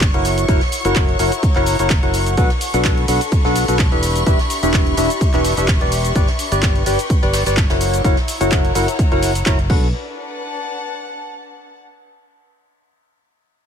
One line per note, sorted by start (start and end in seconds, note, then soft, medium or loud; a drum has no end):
0.00 0.11 G1 medium
0.00 0.25 D4 medium
0.00 0.25 B4 medium
0.00 0.25 G5 medium
0.00 0.25 B5 medium
0.00 2.36 C#6 medium
0.00 kick loud
0.00 snare loud
0.00 clap loud
0.00 closed hi-hat medium
0.00 shaker soft
0.14 0.46 F#1 loud
0.14 0.46 E4 medium
0.14 0.46 F#4 medium
0.14 0.46 A#4 medium
0.14 0.46 C#5 medium
0.14 0.46 F#5 medium
0.14 closed hi-hat soft
0.25 3.04 E4 medium
0.25 snare soft
0.25 open hi-hat loud
0.25 ride medium
0.25 shaker medium
0.37 closed hi-hat medium
0.37 ride soft
0.37 shaker soft
0.46 0.61 E4 loud
0.46 0.61 F#4 loud
0.46 0.61 A#4 medium
0.46 3.04 C#5 medium
0.46 0.61 C#5 medium
0.46 0.61 F#5 loud
0.46 kick loud
0.46 closed hi-hat medium
0.46 ride medium
0.46 shaker soft
0.57 4.79 F#5 medium
0.57 snare soft
0.61 closed hi-hat soft
0.72 open hi-hat loud
0.72 ride medium
0.72 shaker medium
0.85 1.17 F#1 loud
0.85 1.17 E4 loud
0.85 1.17 F#4 medium
0.85 1.17 A#4 medium
0.85 1.17 C#5 medium
0.85 1.17 F#5 loud
0.85 closed hi-hat soft
0.85 shaker soft
0.95 kick loud
0.95 snare loud
0.95 clap loud
0.95 closed hi-hat medium
0.95 shaker soft
1.08 closed hi-hat soft
1.19 1.29 F#1 loud
1.19 1.32 E4 loud
1.19 1.31 F#4 medium
1.19 1.32 A#4 medium
1.19 1.32 C#5 medium
1.19 1.32 F#5 loud
1.19 2.37 A#5 medium
1.19 open hi-hat loud
1.19 ride medium
1.19 shaker medium
1.32 closed hi-hat medium
1.32 shaker soft
1.43 kick loud
1.43 closed hi-hat medium
1.43 ride loud
1.43 shaker soft
1.56 1.77 F#1 loud
1.56 1.76 E4 loud
1.56 1.76 F#4 medium
1.56 1.76 A#4 medium
1.56 1.76 C#5 medium
1.56 1.76 F#5 loud
1.56 clap soft
1.56 closed hi-hat soft
1.56 ride soft
1.66 open hi-hat loud
1.66 ride medium
1.66 shaker medium
1.79 2.00 F#1 loud
1.79 1.90 E4 medium
1.79 1.90 F#4 medium
1.79 1.90 A#4 medium
1.79 1.90 C#5 medium
1.79 1.90 F#5 medium
1.79 closed hi-hat medium
1.79 ride soft
1.79 shaker soft
1.90 kick loud
1.90 snare loud
1.90 clap loud
1.90 closed hi-hat soft
1.90 shaker soft
2.03 2.35 F#1 loud
2.03 2.35 E4 medium
2.03 2.35 F#4 medium
2.03 2.35 A#4 medium
2.03 2.35 C#5 medium
2.03 2.35 F#5 medium
2.03 closed hi-hat soft
2.13 open hi-hat loud
2.13 ride medium
2.13 shaker medium
2.26 closed hi-hat soft
2.26 shaker soft
2.37 2.47 B1 medium
2.37 7.81 D4 medium
2.37 2.50 D4 loud
2.37 2.50 F#4 medium
2.37 2.50 A4 medium
2.37 2.50 B4 medium
2.37 2.50 F#5 loud
2.37 9.70 C#6 medium
2.37 kick loud
2.37 closed hi-hat medium
2.37 ride medium
2.37 shaker soft
2.50 snare medium
2.50 closed hi-hat soft
2.61 open hi-hat loud
2.61 ride medium
2.61 shaker medium
2.66 4.79 A4 medium
2.73 3.06 B1 loud
2.73 3.06 D4 loud
2.73 3.06 F#4 medium
2.73 3.06 A4 medium
2.73 3.06 B4 medium
2.73 3.06 F#5 loud
2.73 7.81 B5 medium
2.73 closed hi-hat soft
2.73 ride soft
2.73 shaker soft
2.85 kick loud
2.85 snare loud
2.85 clap loud
2.85 closed hi-hat medium
2.85 shaker soft
2.97 closed hi-hat soft
3.08 3.18 B1 loud
3.08 3.20 D4 loud
3.08 3.20 F#4 medium
3.08 3.20 A4 medium
3.08 3.20 B4 medium
3.08 3.20 F#5 loud
3.08 open hi-hat loud
3.08 ride medium
3.08 shaker medium
3.21 closed hi-hat medium
3.21 shaker soft
3.32 kick loud
3.32 closed hi-hat medium
3.32 ride medium
3.32 shaker soft
3.45 3.66 B1 medium
3.45 3.65 D4 loud
3.45 3.65 F#4 medium
3.45 3.65 A4 medium
3.45 3.65 B4 medium
3.45 3.65 F#5 loud
3.45 snare soft
3.45 closed hi-hat soft
3.55 open hi-hat loud
3.55 ride medium
3.55 shaker medium
3.68 3.89 B1 loud
3.68 3.79 D4 medium
3.68 3.79 F#4 medium
3.68 3.79 A4 medium
3.68 3.79 B4 medium
3.68 3.79 F#5 medium
3.68 closed hi-hat medium
3.68 ride soft
3.68 shaker soft
3.79 kick loud
3.79 snare loud
3.79 clap loud
3.79 closed hi-hat medium
3.79 shaker soft
3.92 4.24 E1 loud
3.92 4.24 D4 medium
3.92 4.24 E4 medium
3.92 4.24 G4 medium
3.92 4.24 B4 medium
3.92 4.24 E5 medium
3.92 closed hi-hat soft
4.03 snare soft
4.03 open hi-hat loud
4.03 ride medium
4.03 shaker medium
4.16 closed hi-hat soft
4.16 ride soft
4.16 shaker soft
4.26 4.39 D4 loud
4.26 4.39 E4 loud
4.26 4.39 G4 medium
4.26 6.68 G4 medium
4.26 4.39 B4 medium
4.26 4.39 E5 loud
4.26 6.68 E5 medium
4.26 kick loud
4.26 closed hi-hat medium
4.26 ride medium
4.26 shaker soft
4.39 snare medium
4.39 closed hi-hat soft
4.50 open hi-hat loud
4.50 ride medium
4.50 shaker medium
4.63 4.95 E1 loud
4.63 4.95 D4 loud
4.63 4.95 E4 medium
4.63 4.95 G4 medium
4.63 4.95 B4 medium
4.63 4.95 E5 loud
4.63 closed hi-hat medium
4.63 shaker soft
4.74 kick loud
4.74 snare loud
4.74 clap loud
4.74 closed hi-hat medium
4.74 shaker soft
4.87 closed hi-hat soft
4.97 5.07 E1 loud
4.97 5.09 D4 loud
4.97 5.09 E4 medium
4.97 5.09 G4 medium
4.97 5.09 B4 medium
4.97 5.10 E5 loud
4.97 open hi-hat loud
4.97 ride medium
4.97 shaker medium
5.10 closed hi-hat medium
5.10 shaker soft
5.21 kick loud
5.21 closed hi-hat medium
5.21 ride loud
5.21 shaker soft
5.34 5.55 E1 loud
5.34 5.54 D4 loud
5.34 5.54 E4 medium
5.34 5.54 G4 medium
5.34 5.54 B4 loud
5.34 5.54 E5 loud
5.34 clap soft
5.34 closed hi-hat soft
5.34 ride soft
5.44 open hi-hat loud
5.44 ride medium
5.44 shaker medium
5.57 5.78 E1 loud
5.57 5.68 D4 medium
5.57 5.68 E4 medium
5.57 5.68 G4 medium
5.57 5.68 B4 medium
5.57 5.68 E5 medium
5.57 closed hi-hat medium
5.57 ride soft
5.57 shaker soft
5.68 kick loud
5.68 snare loud
5.68 clap loud
5.68 closed hi-hat medium
5.68 ride loud
5.68 shaker soft
5.81 6.13 E1 loud
5.81 6.13 G4 medium
5.81 6.13 B4 medium
5.81 6.13 D5 medium
5.81 closed hi-hat soft
5.91 open hi-hat loud
5.91 ride medium
5.91 shaker medium
6.05 closed hi-hat medium
6.05 shaker soft
6.14 6.28 G4 loud
6.14 6.28 B4 medium
6.14 6.28 D5 loud
6.14 kick loud
6.14 closed hi-hat medium
6.14 ride medium
6.14 shaker soft
6.25 7.81 B4 medium
6.25 snare medium
6.25 closed hi-hat soft
6.39 open hi-hat loud
6.39 ride medium
6.39 shaker medium
6.51 6.84 G1 loud
6.51 6.84 G4 medium
6.51 6.84 B4 medium
6.51 6.84 D5 loud
6.51 closed hi-hat medium
6.51 ride soft
6.51 shaker soft
6.63 kick loud
6.63 snare loud
6.63 clap loud
6.63 closed hi-hat medium
6.63 ride medium
6.63 shaker soft
6.75 7.81 G5 medium
6.75 closed hi-hat soft
6.86 6.96 G1 loud
6.86 6.98 G4 loud
6.86 6.98 B4 medium
6.86 6.98 D5 loud
6.86 open hi-hat loud
6.86 ride medium
6.86 shaker medium
6.99 closed hi-hat medium
6.99 shaker soft
7.09 kick loud
7.09 closed hi-hat medium
7.09 ride medium
7.09 shaker soft
7.22 7.44 G1 loud
7.22 7.43 G4 loud
7.22 7.43 B4 medium
7.22 7.43 D5 loud
7.22 snare medium
7.22 closed hi-hat soft
7.33 snare loud
7.33 open hi-hat loud
7.33 ride medium
7.33 shaker medium
7.46 7.67 G1 loud
7.46 7.57 G4 medium
7.46 7.57 B4 medium
7.46 7.57 D5 medium
7.46 snare loud
7.46 closed hi-hat medium
7.46 ride medium
7.46 shaker soft
7.57 kick loud
7.57 snare loud
7.57 clap loud
7.57 closed hi-hat medium
7.57 shaker soft
7.69 8.02 F#1 medium
7.69 8.02 E4 medium
7.69 8.02 F#4 medium
7.69 8.02 A#4 medium
7.69 8.02 C#5 medium
7.69 8.02 F#5 medium
7.69 snare loud
7.69 closed hi-hat soft
7.69 ride medium
7.81 9.70 E4 medium
7.81 open hi-hat loud
7.81 ride medium
7.81 shaker medium
7.93 closed hi-hat medium
7.93 ride medium
7.93 shaker soft
8.04 8.14 F#1 loud
8.04 8.17 E4 loud
8.04 8.17 F#4 medium
8.04 8.17 A#4 medium
8.04 8.17 C#5 medium
8.04 8.17 F#5 loud
8.04 kick loud
8.04 closed hi-hat medium
8.04 ride medium
8.04 shaker soft
8.13 9.70 C#5 medium
8.13 snare medium
8.13 closed hi-hat soft
8.20 9.70 A#5 medium
8.28 open hi-hat loud
8.28 ride medium
8.28 shaker medium
8.41 8.73 F#1 loud
8.41 8.73 E4 loud
8.41 8.73 F#4 medium
8.41 8.73 A#4 medium
8.41 8.73 C#5 medium
8.41 8.73 F#5 loud
8.41 closed hi-hat medium
8.41 shaker soft
8.52 kick loud
8.52 snare loud
8.52 clap loud
8.52 closed hi-hat medium
8.52 shaker soft
8.65 closed hi-hat soft
8.74 8.85 F#1 loud
8.74 8.87 E4 loud
8.74 8.87 F#4 medium
8.74 8.87 A#4 medium
8.74 8.87 C#5 medium
8.74 8.87 F#5 loud
8.74 9.70 F#5 medium
8.74 open hi-hat loud
8.74 ride medium
8.74 shaker medium
8.88 closed hi-hat medium
8.88 shaker soft
8.99 kick loud
8.99 closed hi-hat medium
8.99 ride medium
8.99 shaker soft
9.11 9.44 F#1 medium
9.11 9.32 E4 loud
9.11 9.32 F#4 medium
9.11 9.32 A#4 medium
9.11 9.32 C#5 medium
9.11 9.32 F#5 loud
9.11 closed hi-hat soft
9.11 ride soft
9.23 open hi-hat loud
9.23 ride medium
9.23 shaker medium
9.35 closed hi-hat medium
9.35 ride soft
9.35 shaker soft
9.46 9.68 F#1 loud
9.46 9.58 E4 loud
9.46 9.58 F#4 medium
9.46 9.58 A#4 medium
9.46 9.58 C#5 medium
9.46 9.58 A#5 loud
9.46 kick loud
9.46 snare loud
9.46 clap loud
9.46 closed hi-hat medium
9.46 shaker soft
9.59 closed hi-hat soft
9.70 9.92 B1 loud
9.70 9.88 D4 medium
9.70 11.55 D4 medium
9.70 9.88 F#4 medium
9.70 9.88 A4 medium
9.70 9.88 B4 medium
9.70 9.88 F#5 loud
9.70 kick loud
9.70 crash medium
9.77 11.55 B4 medium
10.08 11.78 F#5 medium
10.15 11.78 A5 medium